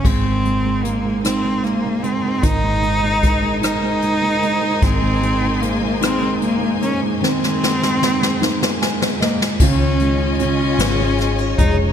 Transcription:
<<
  \new Staff \with { instrumentName = "String section" } { \time 6/8 \key aes \mixolydian \tempo 4. = 50 <ees' bes' c'' aes''>2.~ | <ees' bes' c'' aes''>2.~ | <ees' bes' c'' aes''>2.~ | <ees' bes' c'' aes''>2. |
<f' des'' ees'' aes''>2. | }
  \new Staff \with { instrumentName = "Cello" } { \time 6/8 \key aes \mixolydian c'4 bes8 c'8 bes8 c'8 | ees'4. ees'4. | c'4 bes8 c'8 bes8 des'8 | c'2~ c'8 bes8 |
des'4 des'4. ees'8 | }
  \new Staff \with { instrumentName = "Steel-string acoustic guitar" } { \time 6/8 \key aes \mixolydian r2. | r2. | ees8 c'8 aes'8 bes4 bes8 | ees8 c'8 aes'8 bes8 c'8 bes8 |
<ees f'>4 f'8 aes8 des'16 ees'16 aes8 | }
  \new Staff \with { instrumentName = "Felt piano" } { \time 6/8 \key aes \mixolydian r2. | r2. | r2. | r2 aes''8 ees''8 |
r2. | }
  \new Staff \with { instrumentName = "Felt piano" } { \clef bass \time 6/8 \key aes \mixolydian aes16 aes16 aes16 aes16 aes16 aes16 ees'16 aes16 aes16 aes16 aes16 aes16 | ees16 aes16 aes16 aes16 aes16 aes16 ees'16 aes16 aes16 aes16 aes16 aes16 | aes16 aes16 aes16 aes16 aes16 aes16 ees'16 aes16 aes16 aes16 aes16 aes16 | c'16 aes16 aes16 aes16 aes16 aes16 ees'16 aes16 aes16 aes16 aes16 aes16 |
des8 aes8 des4. aes8 | }
  \new Staff \with { instrumentName = "Fingered electric bass" } { \clef bass \time 6/8 \key aes \mixolydian aes,,2. | aes,,2. | aes,,2. | r2. |
des,4. aes,,4 f,,8 | }
  \new DrumStaff \with { instrumentName = "Drums" } \drummode { \time 6/8 <cymc bd>8 hh8 hh8 <hh ss>8 <hh ss>8 hh8 | <hh bd>8 hh8 <hh bd>8 <hh ss>8 hh8 hh8 | <hh bd>8 hh8 hh8 <hh ss>8 hh8 hh8 | sn16 sn16 sn16 sn16 sn16 sn16 sn16 sn16 sn16 sn16 sn16 sn16 |
<cymc bd>8 hh8 hh8 <hh sn>8 <hh sn>8 <hh bd>8 | }
>>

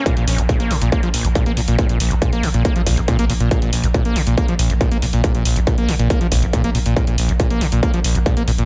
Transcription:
<<
  \new Staff \with { instrumentName = "Acid bass" } { \clef bass \time 4/4 \key bes \minor \tempo 4 = 139 bes,16 bes,16 bes,,16 bes,16 bes,16 bes16 des16 bes,16 bes16 f16 bes,,16 bes,16 bes,16 bes16 bes,16 bes,16 | r16 bes,16 bes,,16 bes,16 bes,16 bes16 des16 bes,16 bes16 f16 bes,,16 bes,16 bes,16 bes16 bes,16 bes,16 | bes,16 bes,16 bes,,16 bes,16 bes,16 bes16 des16 bes,16 bes16 f16 bes,,16 bes,16 bes,16 bes16 bes,16 bes,16 | r16 bes,16 bes,,16 bes,16 bes,16 bes16 des16 bes,16 bes16 f16 bes,,16 bes,16 bes,16 bes16 bes,16 bes,16 |
bes,16 bes,16 bes,,16 bes,16 bes,16 bes16 des16 bes,16 bes16 f16 bes,,16 bes,16 bes,16 bes16 bes,16 bes,16 | }
  \new Staff \with { instrumentName = "Sub bass" } { \clef bass \time 4/4 \key bes \minor r16 bes,,16 bes,,16 bes,,16 r16 bes,,16 bes,,16 bes,,16 r16 bes,,16 bes,,16 bes,,16 r16 bes,,16 bes,,16 bes,,16 | r16 bes,,16 bes,,16 bes,,16 r16 bes,,16 bes,,16 bes,,16 r16 bes,,16 bes,,16 bes,,16 r16 bes,,16 bes,,16 bes,,16 | r16 bes,,16 bes,,16 bes,,16 r16 bes,,16 bes,,16 bes,,16 r16 bes,,16 bes,,16 bes,,16 r16 bes,,16 bes,,16 bes,,16 | r16 bes,,16 bes,,16 bes,,16 r16 bes,,16 bes,,16 bes,,16 r16 bes,,16 bes,,16 bes,,16 r16 bes,,16 bes,,16 bes,,16 |
r16 bes,,16 bes,,16 bes,,16 r16 bes,,16 bes,,16 bes,,16 r16 bes,,16 bes,,16 bes,,16 r16 bes,,16 bes,,16 bes,,16 | }
  \new DrumStaff \with { instrumentName = "Drums" } \drummode { \time 4/4 <hh bd>16 hh16 hho16 hh16 <hh bd>16 hh16 hho16 hh16 <hh bd>16 hh16 hho16 hh16 <hh bd>16 hh16 hho16 hh16 | <hh bd>16 hh16 hho16 hh16 <hh bd>16 hh16 hho16 hh16 <hh bd>16 hh16 <hho bd>16 hh16 <hh bd>16 hh16 hho16 hh16 | <hh bd>16 hh16 hho16 hh16 <hh bd>16 hh16 hho16 hh16 <hh bd>16 hh16 hho16 hh16 <hh bd>16 hh16 hho16 hh16 | <hh bd>16 hh16 hho16 hh16 <hh bd>16 hh16 hho16 hh16 <hh bd>16 hh16 <hho bd>16 hh16 <hh bd>16 hh16 hho16 hh16 |
<hh bd>16 hh16 hho16 hh16 <hh bd>16 hh16 hho16 hh16 <hh bd>16 hh16 hho16 hh16 <hh bd>16 hh16 hho16 hh16 | }
>>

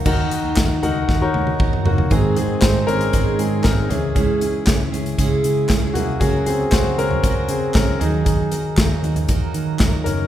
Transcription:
<<
  \new Staff \with { instrumentName = "Grand piano" } { \time 4/4 \key ees \dorian \tempo 4 = 117 <ees' ges' bes' ges''>4~ <ees' ges' bes' ges''>16 r16 <ees' ges' bes' ges''>8 r16 <ees' ges' bes' des''>4~ <ees' ges' bes' des''>16 <bes ges'>8 | <c' aes'>8 <c' aes'>8 <ees' c''>8 <des' bes'>4 <c' aes'>8 <ees' bes'>8 aes'8 | <des' aes'>4. r4. r16. aes'32 <bes ges'>8 | <des' aes'>8 <c' aes'>8 <ges' c''>8 <des' bes'>4 <c' aes'>8 <des' bes'>8 <ees' aes'>8 |
<ees' aes'>4. r2 <des' bes'>8 | }
  \new Staff \with { instrumentName = "Grand piano" } { \clef bass \time 4/4 \key ees \dorian ees4. r2 r8 | <ees aes>4. r2 <fes aes des'>8~ | <fes aes des'>4 r2. | <ges bes>8 r2. r8 |
r4 <ges bes ees'>8 r2 r8 | }
  \new Staff \with { instrumentName = "Steel-string acoustic guitar" } { \time 4/4 \key ees \dorian <ees ges ees' ges' bes'>4 <ges ees' ges' bes'>8 <ees' ges' bes'>4. <ges ees' ges' bes'>8 <ees' ges' bes'>8 | <aes, ees aes c' ees' aes'>8 <aes c' ees' aes'>8 <aes c' ees' aes'>8 <aes c' ees' aes'>8 <aes, ees aes c' ees' aes'>4 <aes c' ees' aes'>8 <des' fes' aes'>8 | <des aes des' fes' aes'>8 <des' fes' aes'>8 <aes des' fes' aes'>8 <des' fes' aes'>8 <des aes des' fes' aes'>4 <aes des' fes' aes'>8 <des' fes' aes'>8 | <des ges des' ges' bes'>8 <des' ges' bes'>8 <ges des' ges' bes'>8 <des' ges' bes'>8 <des ges des' ges' bes'>4 <ges des' ges' bes'>8 <ees ges ees' ges' bes'>8~ |
<ees ges ees' ges' bes'>8 <ees' ges' bes'>8 <ges ees' ges' bes'>8 <ees' ges' bes'>8 <ees ges ees' ges' bes'>4 <ges ees' ges' bes'>8 <ees' ges' bes'>8 | }
  \new Staff \with { instrumentName = "Picked electric bass" } { \clef bass \time 4/4 \key ees \dorian ees,8 r16 ees,16 ees,8 des,8 ees,8 ees,8 ees,8 ges,,8 | aes,,4 aes,,8 aes,,8 aes,,8 aes,8 aes,,8 des,8~ | des,4 des,8 des,8 des,8 des8 des,8 c,8 | des,4 des,8 des,8 des,8 des8 des,8 ees,8~ |
ees,4 ees,8 ees,8 ees,8 ees8 ees,8 ges,,8 | }
  \new DrumStaff \with { instrumentName = "Drums" } \drummode { \time 4/4 <cymc bd>8 hh8 <hc hh bd sn>8 <hh tomfh>8 <bd sn>8 tommh16 tommh16 bd16 toml16 tomfh16 tomfh16 | <hh bd>8 hh8 <hc hh bd sn>8 hh16 hh16 <hh bd>8 hh8 <hc hh bd sn>8 <hh tomfh>8 | <hh bd>8 hh8 <hc hh bd sn>8 hh16 hh16 <hh bd>8 hh8 <hc hh bd sn>8 <hh tomfh>8 | <hh bd>8 hh8 <hc hh bd sn>8 hh16 tomfh16 <hh bd>8 hh8 <hc hh bd sn>8 <hh tomfh>8 |
<hh bd>8 hh8 <hc hh bd sn>8 hh16 <hh tomfh>16 <hh bd>8 hh8 <hc hh bd sn>8 <hh tomfh>8 | }
>>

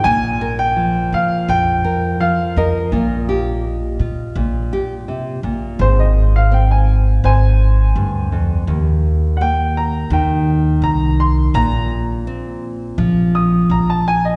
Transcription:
<<
  \new Staff \with { instrumentName = "Upright piano" } { \time 4/4 \key ees \major \tempo 4 = 84 aes''8. g''8. f''8 g''4 f''8 ees''8~ | ees''2. r4 | c''16 ees''8 f''16 g''16 aes''8. <c'' aes''>2 | r4 <ges'' g''>8 bes''8 g''4 bes''8 c'''8 |
bes''8 r2 ees'''8 bes''16 a''16 aes''16 ees''16 | }
  \new Staff \with { instrumentName = "Nylon-string guitar" } { \clef bass \time 4/4 \key ees \major << { f'8 bes'4 f'4 bes'8 f'8 bes'8 | f'8 g'4 f'4 g'4. | r4 c'2. | r4 bes2. |
r4 c'2. | } \\ { bes,4 f4 f,4 f4 | bes,4 r4 bes,4 c8 bes,8 | aes,2. g,8 f,8 | ees,2 ees2 |
bes,2 f2 | } >> }
  \new Staff \with { instrumentName = "Upright bass" } { \clef bass \time 4/4 \key ees \major bes,,4. bes,8 bes,,8 r4 f,8 | bes,,4. bes,8 bes,,8 r4 bes,,8 | aes,,2 aes,,4 d,4 | ees,2 ees,4 c,4 |
bes,,2 bes,,4 bes,,4 | }
>>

